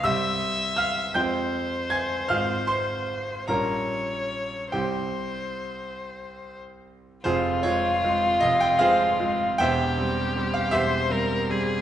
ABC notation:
X:1
M:6/8
L:1/16
Q:3/8=51
K:Fm
V:1 name="Violin"
=e6 c6- | c6 d6 | c8- c z3 | F12 |
G6 c2 B2 A2 |]
V:2 name="Grand piano"
[=e=e']4 [ff']2 [gg']4 [aa']2 | [ff']2 [cc']4 [Bb]6 | [Gg]6 z6 | [FAc]2 d4 e g [Acf]4 |
[c=eg]4- [ceg] f [Gce]6 |]
V:3 name="Grand piano" clef=bass
[C,,G,CG]6 [F,,A,CF]6 | [A,,,A,CF]6 [B,,,G,DF]6 | [C,,G,C=E]12 | [F,,,F,,]2 [A,CF]2 [A,CF]2 [F,,,F,,]2 [A,CF]2 [A,CF]2 |
[=E,,,=E,,]2 [G,C]2 [G,C]2 [E,,,E,,]2 [G,C]2 [G,C]2 |]